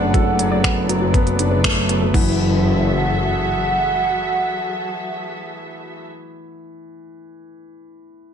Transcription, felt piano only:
Already playing: F#3 A3 B3 D4
0.14 A4
0.39 F#3
0.64 B3
0.89 F#3
1.14 B3
1.39 D4
1.64 A3
1.89 B3
2.14 E3

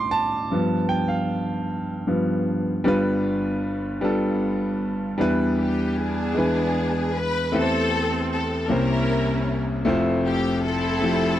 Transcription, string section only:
5.59 G4
5.98 B3 D4 G#4
7.15 B4
7.54 C4 A4
8.33 A4
8.71 C#4 E4 A#4
10.26 G4
10.65 C4 E4 A4

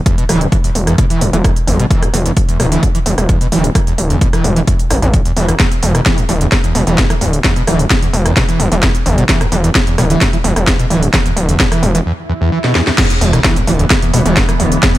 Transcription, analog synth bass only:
0.29 D1
0.75 E1
1.21 E1
1.33 E1
1.67 G1
2.14 E1
2.60 D1
3.06 E1
3.18 E1
3.52 D1
3.98 D1
4.44 E1
4.91 A1
5.02 A1
5.37 E1
5.83 E1
6.29 D1
6.75 E1
6.87 E1
7.21 D1
7.67 D1
8.13 E1
8.60 E1
8.72 E1
9.06 G1
9.52 E1
9.98 D1
10.44 E1
10.56 E1
10.90 D1
11.37 D1
11.83 E1
13.21 E1
13.67 D1
14.14 E1
14.26 E1
14.60 D1

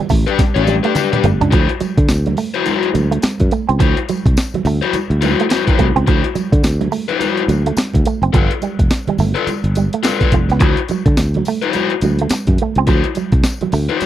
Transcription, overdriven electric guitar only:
0.27 D4 G4 B4
0.55 D4 G4 D5
0.83 D4 G4 B4
0.95 D4 G4 B4
1.12 D4 G4 B4
1.51 E4 F#4 C5
2.54 E4 F#4 C5
2.65 E4 F#4 C5
3.79 E4 F#4 C5
4.81 E4 F#4 C5
5.21 E4 F#4 C5
5.49 E4 F#4 C5
5.67 E4 F#4 C5
6.07 E4 F#4 C5
7.08 E4 F#4 C5
7.19 E4 F#4 C5
8.33 F4 A4 B4
9.34 F4 A4 B4
10.03 F4 A4 B4
10.20 F4 A4 B4
10.60 E4 F#4 C5
11.62 E4 F#4 C5
11.73 E4 F#4 C5
12.87 E4 F#4 C5
13.89 E4 F#4 C5

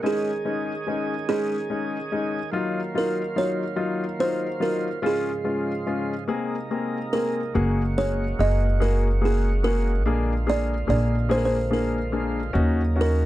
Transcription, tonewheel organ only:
0.02 D#3 G#3 C#4 G#4
2.51 F#3 A#3 F4
5.03 G#2 C#3 F3 G#3
6.30 C3 A#3 D#4
7.55 C#3 F#4
10.06 D3 A#3 F4
12.55 C#3 F#3 D#4

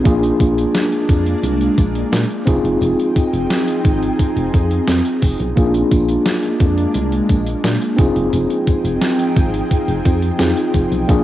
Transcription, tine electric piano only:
0.04 A#3 D4 F4 G#4
2.46 C4 D#4 F4 G#4
5.56 A#3 D4 F4 G#4
7.96 C4 D#4 F4 G#4
10.39 C4 D#4 F4 G#4
11.07 A#3 D4 F4 G#4

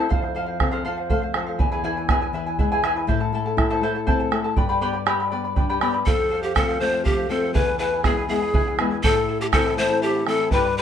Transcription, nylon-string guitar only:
0.11 F2
0.36 F3
0.62 C4
0.87 F3
1.10 A3
1.35 F3
1.59 E2
1.83 E3
2.08 B3
2.33 E3
2.59 G#3
2.83 E3
3.07 A2
3.33 A3
3.57 E4
3.81 A3
4.07 C4
4.31 A3
4.57 G2
4.81 B3
5.07 G4
5.32 B3
5.57 D4
5.82 B3
6.06 F2
6.55 F3 A3 C4
6.81 F3 A3 C4
7.29 F3 A3 C4
7.55 E2
8.04 E3 G#3 B3
8.29 E3 G#3 B3
8.79 E3 G#3 B3
9.04 A2
9.53 E3 A3 C4
9.79 E3 A3 C4
10.27 E3 A3 C4
10.52 G2

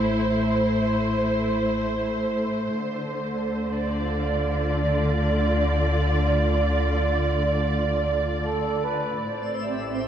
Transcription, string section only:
Already playing: A2 A3 E4 C5
2.74 D3
3.71 D5
3.91 F4
9.21 A2

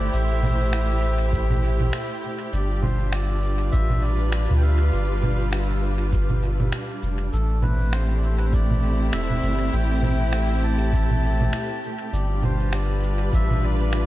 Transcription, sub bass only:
0.13 A1
2.53 G1
3.73 A1
4.50 D2
4.93 G1
7.02 F1
7.33 A1
9.13 E1
9.43 G1
9.73 A1
12.13 G1
13.33 A1

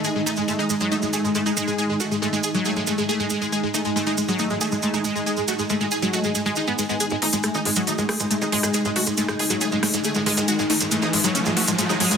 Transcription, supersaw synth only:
0.05 G#4
0.16 G#3
0.26 D#4
0.37 G#3
0.48 G#3
0.59 D#4
0.70 G#3
0.81 G#3
0.92 D#4
1.02 G#3
1.13 G#4
1.24 G#3
1.35 G#3
1.46 D#4
1.57 G#3
1.68 G#3
1.79 G#4
1.89 G#3
2.00 F#4
2.11 G#3
2.22 G#3
2.33 G#3
2.44 G#4
2.55 G#3
2.65 G#4
2.76 G#3
2.87 G#3
2.98 G#3
3.09 G#4
3.20 G#3
3.31 G#3
3.42 G#3
3.52 G#4
3.63 G#3
3.74 D#4
3.85 G#3
3.96 G#3
4.07 D#4
4.18 G#3
4.28 G#3
4.39 D#4
4.50 G#3
4.61 G#4
4.72 G#3
4.83 G#3
4.94 D#4
5.05 G#3
5.15 G#3
5.26 G#4
5.37 G#3
5.48 F#4
5.59 G#3
5.70 G#3
5.81 G#3
5.92 G#4
6.02 G#3
6.13 F#4
6.24 G#3
6.35 G#3
6.46 G#3
6.57 D#4
6.68 G#3
6.79 G#3
6.89 G#3
7.00 G#4
7.11 G#3
7.22 D#4
7.33 G#3
7.44 G#3
7.55 D#4
7.65 G#3
7.76 G#3
7.87 D#4
7.98 G#3
8.09 G#4
8.20 G#3
8.31 G#3
8.42 D#4
8.52 G#3
8.63 G#3
8.74 G#4
8.85 G#3
8.96 F#4
9.07 G#3
9.18 G#3
9.28 G#3
9.39 G#4
9.50 G#3
9.61 G#4
9.72 G#3
9.83 G#3
9.94 G#3
10.05 G#4
10.15 G#3
10.26 G#3
10.37 G#3
10.48 F#4
10.59 G#3
10.70 D#4
10.81 G#3
10.92 G#3
11.02 D#4
11.13 G#3
11.24 G#3
11.35 C#4
11.46 G#3
11.57 F#4
11.68 G#3
11.78 G#3
11.89 D#4
12.00 G#3
12.11 G#3

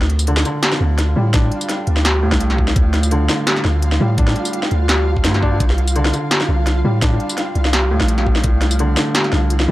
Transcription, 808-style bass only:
Already playing: D2
0.81 D2
1.16 A2
1.87 D2
2.23 D#2
2.32 C2
2.76 D2
3.65 D2
4.00 A2
4.72 D2
5.25 G2
5.60 C2
6.49 C2
6.84 A2
7.56 C2
7.91 D2
8.01 A#1
8.44 C2
9.33 C2
9.68 A2

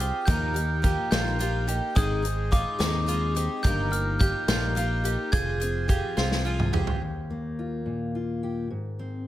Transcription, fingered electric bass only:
Already playing: C2
0.27 D#2
1.12 A#1
1.96 G#1
2.80 D#2
3.64 G1
4.48 A#1
5.33 F1
6.17 C2

